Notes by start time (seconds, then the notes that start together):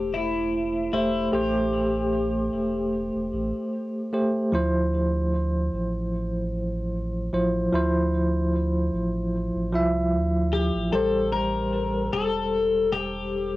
Already playing: E1 A3 G4 C5
0.14 E4
0.93 E1 A3 E4 G4 C5
1.32 A1 A3 G4 C5
2.53 E1
3.15 E1
3.33 A1
4.13 A3 G4 C5
4.52 D2 F3 E4 C5
5.73 A1
7.33 A1 F3 E4 C5
7.73 D2 F3 E4 C5
8.93 A1
9.55 A1
9.72 C2 F3 E4 E5
10.13 D2
10.53 G4
10.75 A1
10.93 A1 G3 G4 A4 C5
11.33 A#4
12.13 E1 A4
12.92 G4